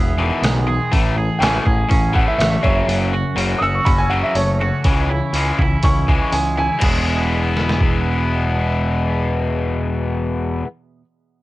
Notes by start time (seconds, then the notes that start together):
Already playing: E1 E2 B2 E3 G#3 B3 G#4 E5
0.18 E2 B2 D#3 E3
0.42 B1 E2 B2 G#3, snare, open hi-hat
0.67 E2 B2 G#4
0.92 A1 A2 E3 A3, kick, open hi-hat
1.16 A2 E3 G#4
1.39 A1 A2 E3 A3 C#4 G5 G#5, open hi-hat
1.43 snare
1.65 A1 A2 E3 G#4, kick
1.89 A1 A2 E3 C#4, kick, open hi-hat
2.13 A2 E3 A3 F#5, kick
2.28 E5
2.38 A1 A2 E3 A3 E5, snare, open hi-hat
2.51 E5
2.63 F#1 F#2 C#3 F#3 C#5 E5, kick
2.87 F#1 F#2 C#3 F#3, open hi-hat
3.13 F#2 C#3 F#4
3.35 F#1 F#2 C#3 F#3 C#4, open hi-hat
3.59 F#1 F#2 C#3 F#4 D#6 E6
3.75 C#6
3.85 F#1 F#2 C#3 C#4 B5, kick, open hi-hat
3.98 G#5
4.10 F#2 C#3 E3 F#3 F#5
4.24 E5
4.35 F#1 F#2 C#3 A3 C#5, open hi-hat
4.60 F#2 C#3 F#4
4.84 C#2 C#3 E3 G#3, kick, open hi-hat
5.09 C#3 E3 E4
5.33 C#2 C#3 E3 G#3 C#4, open hi-hat
5.58 C#2 C#3 E3 E4, kick
5.83 C#2 C#3 E3 C#4 C#6, kick, open hi-hat
6.08 C#3 E3 G#3, kick
6.32 C#2 C#3 E3 G#3 G#5, open hi-hat
6.57 C#3 E3 E4 G#5
6.79 E1 E2 B2 E3 G#3, kick, crash
6.83 B3 E4 G#4
7.57 snare
7.69 snare
7.81 kick